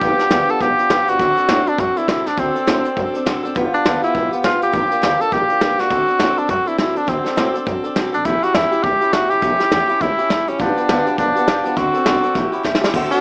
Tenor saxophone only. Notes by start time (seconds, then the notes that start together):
Already playing: G4
0.50 A4
0.62 G4
1.09 F#4
1.68 D4
1.80 F#4
1.98 E4
2.09 E4
2.27 D4
2.40 C4
3.74 D4
4.04 E4
4.45 F4
4.63 G4
5.21 A4
5.33 G4
5.80 F#4
6.39 D4
6.51 F#4
6.68 E4
6.79 E4
6.97 D4
7.09 C4
8.14 D4
8.25 E4
8.43 F#4
8.55 E4
8.83 G4
9.13 F#4
9.30 G4
10.02 E4
10.49 C#4
10.61 D4
11.19 D4
11.77 F#4
13.11 D4